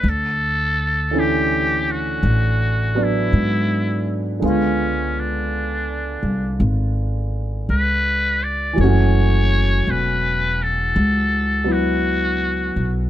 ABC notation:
X:1
M:4/4
L:1/16
Q:"Swing" 1/4=55
K:D
V:1 name="Muted trumpet"
A4 G2 F4 E4- E z | C2 D6 z4 B2 d2 | c4 B2 A4 F4- F z |]
V:2 name="Upright piano"
z4 [D,E,CEA]6 [F,B,D]6 | [D,^G,B,^E]16 | [E,F,A,CF]8- [E,F,A,CF]2 [F,B,E]6 |]
V:3 name="Upright bass" clef=bass
D,,8 A,,,4 ^G,,4 | C,,6 =C,,2 ^G,,,4 ^C,,4 | F,,,4 E,,,4 C,,6 B,,,2 |]